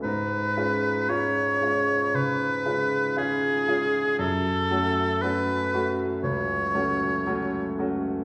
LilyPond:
<<
  \new Staff \with { instrumentName = "Oboe" } { \time 4/4 \key cis \phrygian \tempo 4 = 58 b'4 cis''4 b'4 gis'4 | a'4 b'8. r16 cis''4. r8 | }
  \new Staff \with { instrumentName = "Grand piano" } { \time 4/4 \key cis \phrygian gis,8 <gis cis' eis'>8 <gis cis' eis'>8 <gis cis' eis'>8 cis8 <gis cis' eis'>8 <gis cis' eis'>8 <gis cis' eis'>8 | fis,8 <a cis' fis'>8 <a cis' fis'>8 <a cis' fis'>8 cis,8 <a cis' fis'>8 <a cis' fis'>8 <a cis' fis'>8 | }
>>